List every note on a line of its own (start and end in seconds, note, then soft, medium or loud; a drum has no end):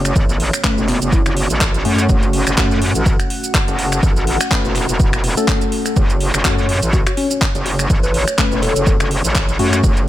0.00 0.14 F#1 loud
0.00 10.09 A3 medium
0.00 10.09 C#4 medium
0.00 10.09 F#4 medium
0.00 2.08 C#5 medium
0.05 finger snap medium
0.05 closed hi-hat medium
0.05 shaker medium
0.16 0.51 A1 loud
0.16 kick loud
0.16 shaker medium
0.29 closed hi-hat soft
0.29 shaker soft
0.40 open hi-hat loud
0.53 finger snap medium
0.53 closed hi-hat medium
0.53 shaker medium
0.64 0.87 A3 medium
0.64 0.87 C#4 medium
0.64 0.87 B4 medium
0.64 kick loud
0.64 clap loud
0.64 shaker medium
0.78 1.00 E1 loud
0.78 shaker soft
0.88 0.97 B3 medium
0.88 clap soft
0.88 open hi-hat loud
1.02 1.24 F#1 loud
1.02 1.09 B3 medium
1.02 closed hi-hat medium
1.02 shaker medium
1.12 1.21 E4 medium
1.12 kick loud
1.12 shaker medium
1.26 1.48 F#1 loud
1.26 1.33 E4 medium
1.26 finger snap medium
1.26 closed hi-hat medium
1.26 shaker soft
1.37 open hi-hat loud
1.50 1.83 A1 loud
1.50 closed hi-hat medium
1.50 shaker medium
1.61 kick loud
1.61 clap loud
1.61 shaker medium
1.74 closed hi-hat medium
1.74 shaker soft
1.85 2.08 F#2 medium
1.85 2.55 A3 medium
1.85 2.55 C#4 medium
1.85 2.55 F#4 loud
1.85 open hi-hat loud
1.98 finger snap medium
1.98 closed hi-hat medium
1.98 shaker medium
2.09 2.45 F#1 loud
2.09 5.95 F#5 medium
2.09 kick loud
2.09 shaker medium
2.23 closed hi-hat soft
2.23 shaker soft
2.33 open hi-hat loud
2.47 2.56 F#1 loud
2.47 finger snap medium
2.47 closed hi-hat medium
2.47 shaker medium
2.58 2.93 F#2 loud
2.58 2.80 A3 medium
2.58 2.80 C#4 medium
2.58 2.80 F#4 loud
2.58 kick loud
2.58 clap loud
2.58 shaker medium
2.71 shaker soft
2.82 open hi-hat loud
2.95 3.17 A1 loud
2.95 closed hi-hat medium
2.95 shaker medium
3.06 kick loud
3.06 shaker medium
3.20 finger snap medium
3.20 closed hi-hat medium
3.20 shaker soft
3.30 open hi-hat loud
3.44 closed hi-hat medium
3.44 shaker medium
3.54 kick loud
3.54 clap loud
3.54 shaker medium
3.68 4.01 F#1 loud
3.68 closed hi-hat medium
3.68 shaker soft
3.79 open hi-hat loud
3.92 finger snap medium
3.92 closed hi-hat medium
3.92 shaker medium
4.03 4.38 A1 medium
4.03 kick loud
4.03 shaker medium
4.16 closed hi-hat soft
4.16 shaker soft
4.27 open hi-hat loud
4.41 finger snap medium
4.41 closed hi-hat medium
4.41 shaker medium
4.51 4.74 A3 medium
4.51 4.74 C#4 medium
4.51 4.74 B4 medium
4.51 kick loud
4.51 clap loud
4.51 shaker medium
4.65 4.87 E1 loud
4.65 shaker soft
4.75 clap soft
4.75 open hi-hat loud
4.89 5.35 E1 medium
4.89 closed hi-hat medium
4.89 shaker medium
5.00 kick loud
5.00 shaker medium
5.13 finger snap medium
5.13 closed hi-hat medium
5.13 shaker soft
5.24 open hi-hat loud
5.37 6.42 A3 medium
5.37 6.42 C#4 medium
5.37 6.42 A4 loud
5.37 closed hi-hat medium
5.37 shaker medium
5.48 kick loud
5.48 clap loud
5.48 shaker medium
5.61 closed hi-hat medium
5.61 shaker soft
5.72 open hi-hat loud
5.86 finger snap medium
5.86 closed hi-hat medium
5.86 shaker medium
5.96 6.32 F#1 loud
5.96 9.82 C#5 medium
5.96 kick loud
5.96 shaker medium
6.10 closed hi-hat soft
6.10 shaker soft
6.20 open hi-hat loud
6.34 6.43 F#1 loud
6.34 finger snap medium
6.34 closed hi-hat medium
6.34 shaker medium
6.45 6.80 F#2 loud
6.45 6.68 A3 loud
6.45 6.68 C#4 medium
6.45 6.68 F#4 loud
6.45 kick loud
6.45 clap loud
6.45 shaker medium
6.58 shaker soft
6.69 open hi-hat loud
6.82 7.05 A1 medium
6.82 closed hi-hat medium
6.82 shaker medium
6.93 7.02 F#4 medium
6.93 kick loud
6.93 shaker medium
7.07 7.14 F#4 medium
7.07 finger snap medium
7.07 closed hi-hat soft
7.07 shaker soft
7.17 7.26 C#4 medium
7.17 open hi-hat loud
7.31 7.38 C#4 medium
7.31 closed hi-hat medium
7.31 shaker medium
7.42 kick loud
7.42 clap loud
7.42 shaker medium
7.55 7.88 F#1 loud
7.55 closed hi-hat medium
7.55 shaker soft
7.66 7.74 F#4 medium
7.66 open hi-hat loud
7.79 7.86 F#4 medium
7.79 finger snap medium
7.79 closed hi-hat medium
7.79 shaker medium
7.90 8.26 A1 loud
7.90 kick loud
7.90 shaker medium
8.03 8.13 B4 medium
8.03 closed hi-hat soft
8.03 shaker soft
8.14 open hi-hat loud
8.28 finger snap medium
8.28 closed hi-hat medium
8.28 shaker medium
8.38 8.61 A3 medium
8.38 8.61 C#4 medium
8.38 8.61 B4 medium
8.38 kick loud
8.38 clap loud
8.38 shaker medium
8.52 8.74 E1 loud
8.52 shaker soft
8.62 9.11 A4 loud
8.62 clap soft
8.62 open hi-hat loud
8.76 8.98 F#1 medium
8.76 closed hi-hat medium
8.76 shaker medium
8.87 kick loud
8.87 shaker medium
9.00 9.22 F#1 loud
9.00 finger snap medium
9.00 closed hi-hat medium
9.00 shaker soft
9.11 open hi-hat loud
9.24 9.58 A1 medium
9.24 closed hi-hat medium
9.24 shaker medium
9.35 kick loud
9.35 clap loud
9.35 shaker medium
9.49 closed hi-hat medium
9.49 shaker soft
9.59 9.82 F#2 loud
9.59 10.09 A3 medium
9.59 10.09 C#4 medium
9.59 10.09 F#4 loud
9.59 9.68 F#4 medium
9.59 open hi-hat loud
9.73 9.80 F#4 medium
9.73 finger snap medium
9.73 closed hi-hat medium
9.73 shaker medium
9.83 10.09 F#1 loud
9.83 10.09 A4 medium
9.83 kick loud
9.83 shaker medium
9.97 closed hi-hat soft
9.97 shaker soft